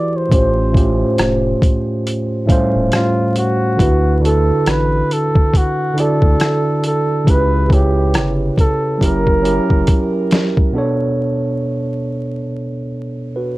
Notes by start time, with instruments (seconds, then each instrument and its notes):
Already playing: tine electric piano E3 E4 F#4 G4 B4, flugelhorn D5
0.16 flugelhorn C5
0.29 sub bass A1, tine electric piano A2 A3 C#4 F4, kick, closed hi-hat
0.34 tine electric piano G4 C5
0.72 tine electric piano A2 A3 C#4 F4, kick
0.77 tine electric piano G4 C5, closed hi-hat
1.18 sub bass F1, cross-stick, closed hi-hat
1.62 kick, closed hi-hat
2.07 closed hi-hat
2.46 tine electric piano A2 A3 C#4 F5, kick, closed hi-hat
2.51 tine electric piano G3 C5
2.75 sub bass D#1
2.92 flugelhorn F4, cross-stick, closed hi-hat
3.36 flugelhorn F#4, closed hi-hat
3.77 sub bass D2, tine electric piano D3 D4 E4, kick, closed hi-hat
3.81 tine electric piano F#4 B4
4.20 tine electric piano D3 D4 E4
4.25 tine electric piano F#4 A4, flugelhorn A4, closed hi-hat
4.66 sub bass A1, flugelhorn B4, cross-stick, closed hi-hat
5.11 flugelhorn A4, closed hi-hat
5.35 kick
5.54 flugelhorn F#4, kick, closed hi-hat
5.94 tine electric piano D3 D4 E4, closed hi-hat
5.98 tine electric piano F#4 D5, flugelhorn A4
6.22 sub bass D2, kick
6.40 cross-stick, closed hi-hat
6.84 flugelhorn A4, closed hi-hat
7.24 sub bass C#2, tine electric piano C#3 C#4 E4, kick, closed hi-hat
7.29 tine electric piano G4 B4, flugelhorn B4
7.68 tine electric piano C#3 C#4 E4, kick
7.72 tine electric piano G4 C#5, flugelhorn G4, closed hi-hat
8.14 sub bass G1, cross-stick, closed hi-hat
8.58 flugelhorn A4, kick, closed hi-hat
8.98 sub bass F#1, tine electric piano F#3 C#4 E4, kick
9.02 tine electric piano G4 A#4, flugelhorn A#4, closed hi-hat
9.27 kick
9.42 tine electric piano F#3 C#4 E4, closed hi-hat
9.46 tine electric piano G4 A#4
9.70 sub bass F#1, kick
9.87 kick, closed hi-hat
10.31 snare, closed hi-hat
10.57 kick
10.72 tine electric piano B2 B3 D4
10.76 tine electric piano A4 C#5
13.36 tine electric piano F#4 B4